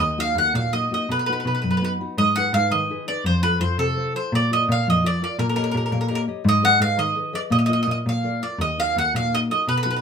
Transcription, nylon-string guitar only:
0.00 D#3
0.18 A#3 D#4 F#4
0.37 A#3 D#4 F#4
0.55 A#3
0.73 A#3 D#4 F#4
0.91 A#3 D#4 F#4
1.10 B2
1.29 B3 D#4 F#4
1.46 B3 D#4 F#4
1.64 F#3
1.81 B3 D#4 F#4
2.00 B3 D#4 F#4
2.19 G#3
2.37 D#4 G#4 B4
2.54 D#4 G#4 B4
2.73 D#3
2.90 D#4 G#4 B4
3.08 D#4 G#4 B4
3.26 F3
3.43 F4 A4 C5
3.61 F4 A4 C5
3.80 C3
3.97 F4 A4 C5
4.14 F4 A4 C5
4.34 A#3
4.51 F4 A#4 D5
4.69 F4 A#4 D5
4.87 F3
5.04 F4 A#4 D5
5.22 F4 A#4 D5
5.39 A#3
5.56 G4 C#5 D#5
5.74 G4 C#5 D#5
5.93 A#3
6.09 G4 C#5 D#5
6.27 G4 C#5 D#5
6.44 G#3
6.62 G#4 B4 D#5
6.80 G#4 B4 D#5
6.97 D#3
7.15 G#4 B4 D#5
7.33 G#4 B4 D#5
7.50 A#3
7.69 F4 A#4 D#5
7.87 F4 A#4 D#5
8.06 A#3
8.23 F4 A#4 D5
8.42 F4 A#4 D5
8.60 D#3
8.78 D#4 F#4 A#4
8.96 D#4 F#4 A#4
9.15 A#3
9.33 D#4 F#4 A#4
9.51 D#4 F#4 A#4
9.69 B2
9.85 B3 D#4 F#4

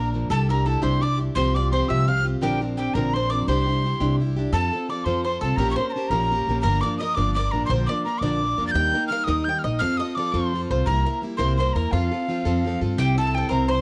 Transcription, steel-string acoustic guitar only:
Already playing: F3 A#3
0.00 D4 A#4
0.13 F3 A#3 D4 A#4
0.29 C3 G3 D4 E4 G4
0.49 D4 E4 G4
0.65 G3 D4 E4 G4
0.82 C3 G3 D4 E4 G4
1.01 G3 D4 E4 G4
1.18 D4 E4 G4
1.36 C3 F3 C4 F4 G4
1.55 C4 F4 G4
1.72 F3 C4 F4 G4
1.88 C3 F3 C4 F4 G4
2.07 F3 C4 F4 G4
2.24 C4 F4 G4
2.41 A#2 D3 F3 C4 D4 A#4
2.61 F3 C4 D4 A#4
2.78 F3 C4 D4 A#4
2.96 A#2 D3 F3 C4 D4 A#4
3.15 F3 C4 D4 A#4
3.31 F3 C4 D4 A#4
3.48 C3 G3 D4 E4 G4
3.67 D4 E4 G4
3.84 G3 D4 E4 G4
4.00 C3 G3 D4 E4 G4
4.19 G3 D4 E4 G4
4.37 D4 E4 G4
4.53 F3 C4 F4 A4
4.73 C4 F4 A4
4.89 F3 C4 F4 A4
5.07 F3 C4 F4 A4
5.26 C4 F4 A4
5.42 C4 F4 A4
5.58 A#2 F3 A#3 C#4 G4 A#4
5.78 A#3 C#4 G4 A#4
5.95 A#3 C#4 G4 A#4
6.11 A#2 F3 A#3 C#4 G4 A#4
6.31 A#3 C#4 G4 A#4
6.49 A#3 C#4 G4 A#4
6.64 G2 D3 F3 A#3 D4 A#4
6.83 F3 A#3 D4 A#4
7.00 F3 A#3 D4 A#4
7.17 G2 D3 F3 A#3 D4 A#4
7.36 F3 A#3 D4 A#4
7.53 F3 A#3 D4 A#4
7.69 A#2 D3 F3 A#3 D4 A#4
7.89 F3 A#3 D4 A#4
8.05 F3 A#3 D4 A#4
8.22 A#2 D3 F3 A#3 D4 A#4
8.41 F3 A#3 D4 A#4
8.58 F3 A#3 D4 A#4
8.74 D#3 G3 A#3 D#4 A#4
8.94 A#3 D#4 A#4
9.10 G3 A#3 D#4 A#4
9.27 D#3 G3 A#3 D#4 A#4
9.47 G3 A#3 D#4 A#4
9.64 A#3 D#4 A#4
9.80 F3 C4 F4 A4
9.99 C4 F4 A4
10.16 F3 C4 F4 A4
10.34 F3 C4 F4 A4
10.53 F3 C4 F4 A4
10.70 C4 F4 A4
10.87 C3 G3 A#3 E4 A#4
11.05 A#3 E4 A#4
11.22 G3 A#3 E4 A#4
11.39 C3 G3 A#3 E4 A#4
11.59 G3 A#3 E4 A#4
11.75 A#3 E4 A#4
11.93 F3 C4 F4 A4
12.12 C4 F4 A4
12.28 F3 C4 F4 A4
12.45 F3 C4 F4 A4
12.65 F3 C4 F4 A4
12.81 C4 F4 A4
12.98 C3 G3 C4 E4 C5
13.17 C4 E4 C5
13.34 G3 C4 E4 C5
13.50 C3 G3 C4 E4 C5
13.70 G3 C4 E4 C5

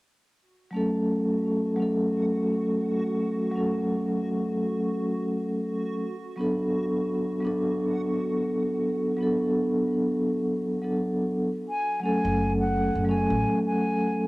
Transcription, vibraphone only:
0.71 F#3 A3 C#4
0.76 A4
1.76 F#3 A3 C#4
1.82 A4
3.52 F#3 A3
3.56 C#4 A4
6.36 F#3 B3 D4
6.41 A4
7.41 F#3 B3
7.45 D4 A4
9.17 F#3 B3
9.21 D4 A4
10.82 F#3 B3 D4 A4
12.00 F#3 A3 C#4
12.05 A4
13.05 F#3 A3
13.09 C#4 A4

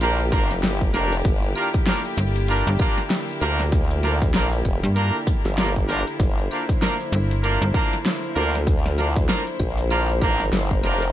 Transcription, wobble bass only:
Already playing: A#1
0.63 G1
0.94 F1
1.25 G1
3.41 D2
4.34 A#1
4.65 F1
5.45 G1
6.20 G1
8.36 D2
9.60 A#1
10.24 A1
10.52 G1
10.83 F1

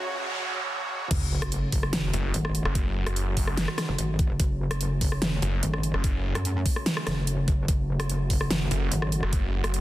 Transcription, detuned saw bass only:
2.14 F#1
2.65 F#1
3.06 F#1
5.42 F#1
5.94 F#1
8.71 F#1
9.23 F#1
9.64 F#1

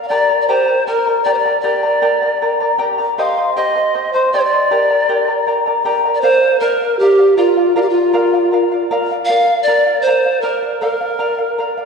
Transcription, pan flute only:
0.04 F5
0.08 D5
0.41 D5
0.48 C5
0.87 A#4
1.24 D5
1.34 C5
1.38 D5
1.61 D5
3.19 F5
3.56 D#5
4.13 C5
4.33 D5
4.39 C5
4.44 D5
6.15 D5
6.21 C5
6.60 A#4
6.99 G4
7.37 F4
7.76 F4
7.81 G4
7.89 F4
9.25 F5
9.63 D5
10.02 C5
10.41 A#4
10.81 A#4

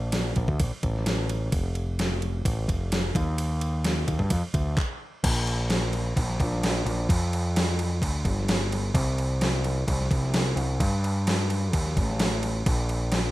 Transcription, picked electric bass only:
Already playing: A#1
0.37 A#1
0.48 D2
0.60 A#1
0.83 A1
1.53 F1
2.45 A1
2.68 F1
3.15 D#2
4.08 D#2
4.19 G2
4.31 F2
4.54 D2
5.24 A#1
6.16 A#1
6.40 A#1
6.85 A#1
7.09 F2
8.02 D2
8.24 G1
8.94 C2
9.87 C2
10.11 C2
10.56 C2
10.80 G2
11.73 D#2
11.97 A1
12.66 A#1

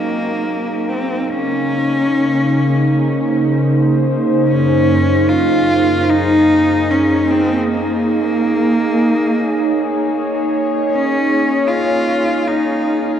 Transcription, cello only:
Already playing: A#3
0.89 C4
1.29 C#4
4.48 C#4
5.28 F4
6.10 D#4
6.91 C#4
7.31 C4
7.71 A#3
10.91 C#4
11.67 F4
12.47 D#4

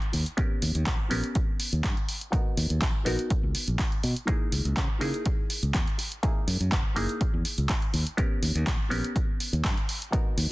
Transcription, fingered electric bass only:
0.14 D#2
0.62 D#2
0.75 D#2
0.87 A#1
1.11 A#1
1.73 D#2
1.84 G2
2.57 D#2
2.70 D#2
2.82 A#1
3.06 A#1
3.43 C#2
3.68 A#1
4.04 B2
4.52 C#2
4.65 C#2
4.77 C#3
5.01 C#3
5.63 C#2
5.74 E2
6.48 F#2
6.60 F#2
6.72 F#1
6.96 F#1
7.33 E2
7.58 C#2
7.94 D#2
8.42 D#2
8.55 D#2
8.67 A#1
8.91 A#1
9.53 D#2
10.37 D#2

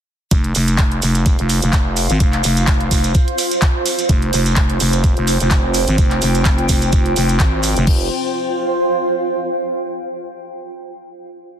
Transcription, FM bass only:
0.31 F1
0.55 F1
0.79 F1
1.02 F1
1.39 F1
1.63 F1
2.10 G#1
2.20 F1
2.44 F1
2.68 F1
2.91 F1
4.09 F1
4.33 F1
4.57 F1
4.80 F1
5.17 F1
5.40 F1
5.88 G#1
5.98 F1
6.22 F1
6.45 F1
6.69 F1
6.93 F1
7.16 F1
7.40 G#1
7.77 F1
7.87 F1

